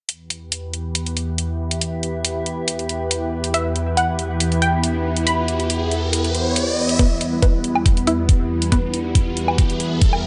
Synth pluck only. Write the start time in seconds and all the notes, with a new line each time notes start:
3.54 E5
3.97 F#5
4.62 G5
5.27 B5
6.99 B3 B4
7.42 B3 B4
8.07 E4 E5
8.72 B3 B4